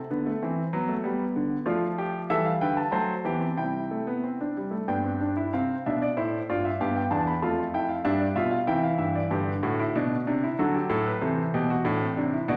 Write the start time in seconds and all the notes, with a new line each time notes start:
Already playing: A4
0.10 D3 B3
0.26 A3
0.42 E3 C4
0.73 F#3 B3
0.89 A3
1.04 G3 B3
1.36 D3
1.66 F3 A3 F4 D5
1.98 G4
2.30 E3 G3 A4 E5
2.45 F5
2.61 D3 B4 G5
2.77 A5
2.92 F#3 A3 C5 A5
3.25 E3 B3 G4
3.41 C4
3.57 C3 G3 E4 G5
3.91 A3
4.07 B3
4.24 C4
4.41 D4
4.57 G3
4.71 A3
4.88 G2 B3 D4 G5
5.04 C4
5.21 D4
5.37 E4
5.53 C3 C4 F5
5.86 B2 D4 E5
6.02 D5
6.17 A2 E4 C5
6.50 G2 F4 D5
6.65 E5
6.80 G2 B3 G4 F5
6.96 G5
7.11 E2 D4 A5
7.27 B5
7.42 F2 A3 F4 A5
7.74 E4 G5
7.89 F5
8.04 G2 G3 D4 E5
8.20 D5
8.36 B2 F4 E5
8.51 F5
8.67 C3 E3 E4 G5
8.84 F5
8.98 G2 E5
9.15 D5
9.31 G2 D3 G4 B4
9.63 A2 F#4
9.79 E4
9.95 B2 D4
10.27 C3 D4
10.44 E4
10.59 D3 F#3 F#4 A4
10.74 G4
10.90 A2 A4
11.06 B4
11.21 C3 E3 A4 C5
11.54 B2 G4
11.70 F#4
11.84 A2 D4
12.01 C4
12.17 C3 D4
12.33 E4
12.48 B2 D3 F#4 D5